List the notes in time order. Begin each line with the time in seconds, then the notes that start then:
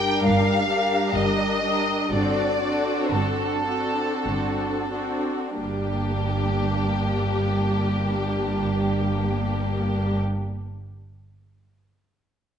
Already playing: G1 G2 G3 D4 G4 A#4 G5
0.24 G1 G2 F5
0.69 G3 D4 G4 A#4
1.15 G1 G2 D#5
1.64 G3 D4 G4 A#4
2.11 G1 G2 C4 D4 F#4 A4 D5
2.61 C4 D4 F#4 A4
3.12 G1 G2 A4
3.67 C4 D4 F#4 A4
4.25 G1 G2
4.91 C4 D4 F#4 A4
5.60 G1 G2 G3 A#3 D4 G4